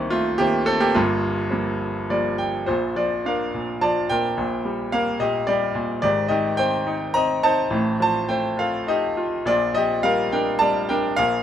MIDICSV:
0, 0, Header, 1, 2, 480
1, 0, Start_track
1, 0, Key_signature, -2, "major"
1, 0, Tempo, 557103
1, 825, Time_signature, 3, 2, 24, 8
1, 1304, Tempo, 577478
1, 3224, Tempo, 556586
1, 6104, Tempo, 573066
1, 9676, End_track
2, 0, Start_track
2, 0, Title_t, "Grand piano"
2, 0, Program_c, 0, 0
2, 0, Control_c, 0, 64, 127
2, 0, Note_on_c, 0, 36, 75
2, 0, Note_on_c, 0, 51, 59
2, 0, Note_on_c, 0, 58, 48
2, 0, Note_on_c, 0, 60, 57
2, 90, Note_on_c, 0, 65, 85
2, 102, Note_on_c, 0, 57, 69
2, 324, Note_off_c, 0, 58, 0
2, 327, Note_on_c, 0, 67, 103
2, 328, Note_off_c, 0, 57, 0
2, 331, Note_off_c, 0, 51, 0
2, 334, Note_off_c, 0, 60, 0
2, 337, Note_on_c, 0, 58, 79
2, 346, Note_off_c, 0, 65, 0
2, 347, Note_on_c, 0, 51, 57
2, 352, Note_on_c, 0, 60, 61
2, 560, Note_off_c, 0, 67, 0
2, 565, Note_off_c, 0, 58, 0
2, 567, Note_off_c, 0, 60, 0
2, 569, Note_on_c, 0, 69, 93
2, 580, Note_on_c, 0, 60, 79
2, 692, Note_on_c, 0, 58, 71
2, 693, Note_on_c, 0, 67, 97
2, 694, Note_off_c, 0, 60, 0
2, 701, Note_off_c, 0, 69, 0
2, 795, Note_off_c, 0, 36, 0
2, 806, Note_off_c, 0, 58, 0
2, 811, Note_off_c, 0, 51, 0
2, 815, Note_on_c, 0, 65, 82
2, 818, Note_on_c, 0, 58, 75
2, 822, Note_off_c, 0, 67, 0
2, 826, Note_on_c, 0, 31, 69
2, 828, Note_on_c, 0, 43, 80
2, 836, Control_c, 0, 64, 0
2, 965, Control_c, 0, 64, 127
2, 1295, Note_off_c, 0, 58, 0
2, 1296, Note_on_c, 0, 53, 52
2, 1302, Note_on_c, 0, 55, 45
2, 1308, Note_on_c, 0, 58, 55
2, 1747, Note_off_c, 0, 65, 0
2, 1767, Note_off_c, 0, 53, 0
2, 1769, Note_off_c, 0, 55, 0
2, 1773, Note_off_c, 0, 58, 0
2, 1791, Note_on_c, 0, 53, 48
2, 1794, Note_on_c, 0, 74, 63
2, 1797, Note_on_c, 0, 58, 51
2, 1798, Note_on_c, 0, 55, 41
2, 2018, Note_off_c, 0, 74, 0
2, 2027, Note_on_c, 0, 79, 71
2, 2238, Note_off_c, 0, 31, 0
2, 2239, Note_off_c, 0, 43, 0
2, 2252, Note_off_c, 0, 79, 0
2, 2260, Note_off_c, 0, 53, 0
2, 2261, Note_on_c, 0, 72, 70
2, 2262, Note_off_c, 0, 58, 0
2, 2263, Note_off_c, 0, 55, 0
2, 2269, Note_on_c, 0, 65, 54
2, 2272, Note_on_c, 0, 34, 60
2, 2278, Note_on_c, 0, 46, 65
2, 2281, Control_c, 0, 64, 0
2, 2414, Control_c, 0, 64, 127
2, 2492, Note_off_c, 0, 65, 0
2, 2507, Note_on_c, 0, 53, 49
2, 2509, Note_on_c, 0, 74, 66
2, 2512, Note_off_c, 0, 72, 0
2, 2512, Note_on_c, 0, 65, 54
2, 2734, Note_off_c, 0, 65, 0
2, 2749, Note_on_c, 0, 62, 52
2, 2756, Note_off_c, 0, 74, 0
2, 2757, Note_on_c, 0, 77, 66
2, 2773, Note_on_c, 0, 70, 60
2, 2977, Note_off_c, 0, 46, 0
2, 2990, Note_on_c, 0, 46, 52
2, 3203, Note_off_c, 0, 70, 0
2, 3205, Note_off_c, 0, 53, 0
2, 3216, Note_on_c, 0, 81, 77
2, 3217, Note_on_c, 0, 53, 55
2, 3228, Note_on_c, 0, 74, 64
2, 3242, Note_off_c, 0, 77, 0
2, 3450, Note_off_c, 0, 74, 0
2, 3454, Note_off_c, 0, 46, 0
2, 3458, Note_on_c, 0, 79, 95
2, 3467, Note_on_c, 0, 46, 55
2, 3468, Note_off_c, 0, 81, 0
2, 3475, Note_on_c, 0, 70, 58
2, 3669, Note_off_c, 0, 34, 0
2, 3674, Note_off_c, 0, 62, 0
2, 3685, Note_off_c, 0, 53, 0
2, 3692, Note_off_c, 0, 46, 0
2, 3698, Note_on_c, 0, 34, 59
2, 3705, Note_on_c, 0, 46, 60
2, 3712, Control_c, 0, 64, 0
2, 3872, Control_c, 0, 64, 127
2, 3937, Note_on_c, 0, 55, 50
2, 4149, Note_off_c, 0, 70, 0
2, 4173, Note_on_c, 0, 77, 83
2, 4179, Note_on_c, 0, 58, 60
2, 4195, Note_on_c, 0, 70, 67
2, 4197, Note_off_c, 0, 79, 0
2, 4398, Note_off_c, 0, 46, 0
2, 4409, Note_off_c, 0, 70, 0
2, 4410, Note_on_c, 0, 75, 84
2, 4411, Note_on_c, 0, 46, 51
2, 4421, Note_off_c, 0, 77, 0
2, 4425, Note_on_c, 0, 67, 58
2, 4640, Note_off_c, 0, 55, 0
2, 4641, Note_off_c, 0, 67, 0
2, 4643, Note_on_c, 0, 74, 81
2, 4653, Note_on_c, 0, 55, 59
2, 4657, Note_off_c, 0, 75, 0
2, 4660, Note_on_c, 0, 67, 64
2, 4871, Note_off_c, 0, 46, 0
2, 4884, Note_on_c, 0, 46, 66
2, 4980, Note_off_c, 0, 74, 0
2, 4989, Note_off_c, 0, 67, 0
2, 5095, Note_off_c, 0, 34, 0
2, 5104, Note_off_c, 0, 58, 0
2, 5118, Note_off_c, 0, 55, 0
2, 5118, Note_on_c, 0, 74, 84
2, 5121, Note_off_c, 0, 46, 0
2, 5127, Note_on_c, 0, 32, 65
2, 5129, Note_on_c, 0, 44, 71
2, 5130, Note_on_c, 0, 67, 61
2, 5143, Control_c, 0, 64, 0
2, 5286, Control_c, 0, 64, 127
2, 5340, Note_off_c, 0, 67, 0
2, 5346, Note_on_c, 0, 75, 81
2, 5350, Note_off_c, 0, 74, 0
2, 5353, Note_on_c, 0, 67, 67
2, 5365, Note_on_c, 0, 51, 59
2, 5587, Note_off_c, 0, 67, 0
2, 5594, Note_on_c, 0, 79, 97
2, 5609, Note_off_c, 0, 75, 0
2, 5609, Note_on_c, 0, 72, 72
2, 5611, Note_on_c, 0, 60, 60
2, 5850, Note_on_c, 0, 63, 60
2, 6064, Note_off_c, 0, 72, 0
2, 6076, Note_off_c, 0, 60, 0
2, 6083, Note_on_c, 0, 82, 100
2, 6089, Note_on_c, 0, 60, 60
2, 6103, Note_on_c, 0, 75, 75
2, 6106, Note_off_c, 0, 79, 0
2, 6307, Note_off_c, 0, 51, 0
2, 6318, Note_off_c, 0, 63, 0
2, 6324, Note_off_c, 0, 75, 0
2, 6331, Note_on_c, 0, 63, 67
2, 6331, Note_on_c, 0, 81, 95
2, 6339, Note_off_c, 0, 82, 0
2, 6345, Note_on_c, 0, 72, 73
2, 6542, Note_off_c, 0, 32, 0
2, 6543, Note_off_c, 0, 44, 0
2, 6556, Note_on_c, 0, 33, 66
2, 6557, Note_off_c, 0, 60, 0
2, 6559, Note_on_c, 0, 45, 73
2, 6566, Note_off_c, 0, 63, 0
2, 6587, Control_c, 0, 64, 0
2, 6732, Control_c, 0, 64, 127
2, 6777, Note_off_c, 0, 81, 0
2, 6784, Note_off_c, 0, 72, 0
2, 6807, Note_on_c, 0, 53, 55
2, 6824, Note_on_c, 0, 81, 87
2, 6827, Note_on_c, 0, 72, 65
2, 7044, Note_off_c, 0, 72, 0
2, 7045, Note_on_c, 0, 79, 80
2, 7047, Note_on_c, 0, 57, 55
2, 7061, Note_on_c, 0, 72, 64
2, 7066, Note_off_c, 0, 81, 0
2, 7283, Note_off_c, 0, 72, 0
2, 7285, Note_on_c, 0, 65, 46
2, 7299, Note_off_c, 0, 79, 0
2, 7299, Note_on_c, 0, 77, 75
2, 7308, Note_on_c, 0, 69, 52
2, 7526, Note_off_c, 0, 77, 0
2, 7531, Note_off_c, 0, 69, 0
2, 7535, Note_on_c, 0, 63, 49
2, 7545, Note_on_c, 0, 75, 81
2, 7557, Note_on_c, 0, 67, 61
2, 7755, Note_off_c, 0, 53, 0
2, 7774, Note_off_c, 0, 65, 0
2, 7786, Note_on_c, 0, 65, 57
2, 7886, Note_off_c, 0, 75, 0
2, 7892, Note_off_c, 0, 67, 0
2, 7987, Note_off_c, 0, 33, 0
2, 7989, Note_off_c, 0, 45, 0
2, 7998, Note_off_c, 0, 57, 0
2, 8013, Note_off_c, 0, 63, 0
2, 8023, Note_off_c, 0, 65, 0
2, 8024, Note_on_c, 0, 34, 58
2, 8025, Note_on_c, 0, 46, 67
2, 8034, Note_on_c, 0, 74, 87
2, 8041, Control_c, 0, 64, 0
2, 8046, Note_on_c, 0, 65, 65
2, 8197, Control_c, 0, 64, 127
2, 8264, Note_off_c, 0, 65, 0
2, 8264, Note_on_c, 0, 53, 50
2, 8267, Note_on_c, 0, 75, 89
2, 8282, Note_off_c, 0, 74, 0
2, 8289, Note_on_c, 0, 67, 67
2, 8506, Note_off_c, 0, 67, 0
2, 8506, Note_on_c, 0, 77, 90
2, 8510, Note_on_c, 0, 55, 53
2, 8519, Note_off_c, 0, 75, 0
2, 8525, Note_on_c, 0, 70, 75
2, 8745, Note_off_c, 0, 70, 0
2, 8750, Note_on_c, 0, 79, 74
2, 8754, Note_on_c, 0, 62, 51
2, 8759, Note_off_c, 0, 77, 0
2, 8766, Note_on_c, 0, 70, 67
2, 8973, Note_on_c, 0, 81, 90
2, 8983, Note_off_c, 0, 55, 0
2, 8986, Note_off_c, 0, 70, 0
2, 8992, Note_on_c, 0, 74, 69
2, 8996, Note_on_c, 0, 55, 61
2, 9002, Note_off_c, 0, 79, 0
2, 9203, Note_off_c, 0, 53, 0
2, 9206, Note_off_c, 0, 81, 0
2, 9217, Note_off_c, 0, 74, 0
2, 9223, Note_off_c, 0, 62, 0
2, 9224, Note_on_c, 0, 79, 77
2, 9235, Note_on_c, 0, 70, 68
2, 9236, Note_on_c, 0, 62, 64
2, 9433, Note_off_c, 0, 34, 0
2, 9433, Note_off_c, 0, 46, 0
2, 9453, Note_off_c, 0, 70, 0
2, 9455, Note_off_c, 0, 55, 0
2, 9456, Note_on_c, 0, 77, 97
2, 9463, Note_off_c, 0, 62, 0
2, 9471, Note_off_c, 0, 79, 0
2, 9471, Note_on_c, 0, 46, 72
2, 9472, Note_on_c, 0, 34, 61
2, 9475, Note_on_c, 0, 70, 68
2, 9480, Control_c, 0, 64, 0
2, 9616, Control_c, 0, 64, 127
2, 9676, Note_off_c, 0, 34, 0
2, 9676, Note_off_c, 0, 46, 0
2, 9676, Note_off_c, 0, 70, 0
2, 9676, Note_off_c, 0, 77, 0
2, 9676, End_track
0, 0, End_of_file